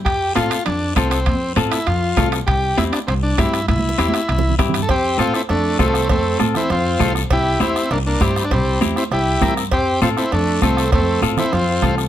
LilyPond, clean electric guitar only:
\new Staff \with { instrumentName = "Clean electric guitar" } { \time 4/4 \key f \major \tempo 4 = 199 r4 <c' f' a'>8 r4. <c' f' a'>8 r8 | r4 <c' f' a'>8 r4. <c' f' a'>8 r8 | r4 <c' e' g'>8 r4. <c' e' g'>8 r8 | r4 <c' e' g'>8 r4. <c' e' g'>8 r8 |
r4 <c' f' a'>8 r4. <c' f' a'>8 r8 | r4 <c' f' a'>8 r4. <c' f' a'>8 r8 | r4 <c' e' g'>8 r4. <c' e' g'>8 r8 | r4 <c' e' g'>8 r4. <c' e' bes'>8 r8 |
r4 <c' f' a'>8 r4. <c' f' a'>8 r8 | r4 <c' f' a'>8 r4. <c' f' a'>8 r8 | }